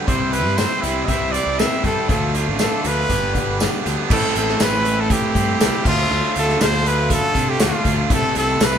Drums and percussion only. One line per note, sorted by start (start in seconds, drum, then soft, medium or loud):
0.08 kick loud
0.08 closed hi-hat medium
0.33 closed hi-hat medium
0.58 snare loud
0.58 closed hi-hat medium
0.58 tambourine loud
0.83 closed hi-hat medium
1.08 kick medium
1.08 closed hi-hat medium
1.34 closed hi-hat medium
1.59 snare medium
1.59 closed hi-hat medium
1.59 tambourine loud
1.84 kick medium
1.84 closed hi-hat medium
2.09 kick loud
2.09 closed hi-hat medium
2.35 closed hi-hat medium
2.59 snare loud
2.59 closed hi-hat medium
2.59 tambourine loud
2.84 closed hi-hat medium
3.10 kick medium
3.10 closed hi-hat medium
3.35 kick medium
3.35 closed hi-hat medium
3.60 snare medium
3.60 closed hi-hat medium
3.60 tambourine loud
3.86 closed hi-hat medium
4.10 kick loud
4.10 crash loud
4.35 closed hi-hat medium
4.48 snare soft
4.60 snare loud
4.60 closed hi-hat loud
4.60 tambourine loud
4.85 closed hi-hat medium
5.10 kick medium
5.10 closed hi-hat medium
5.35 kick medium
5.35 closed hi-hat medium
5.61 snare loud
5.61 closed hi-hat loud
5.61 tambourine loud
5.85 kick loud
5.85 crash medium
6.35 closed hi-hat medium
6.49 snare soft
6.61 snare loud
6.61 closed hi-hat loud
6.61 tambourine loud
6.86 closed hi-hat medium
7.10 kick medium
7.10 closed hi-hat loud
7.35 kick medium
7.35 closed hi-hat medium
7.60 snare loud
7.60 closed hi-hat loud
7.60 tambourine loud
7.85 kick medium
7.85 closed hi-hat medium
8.10 kick loud
8.10 closed hi-hat loud
8.35 closed hi-hat medium
8.60 snare loud
8.60 closed hi-hat loud
8.60 tambourine loud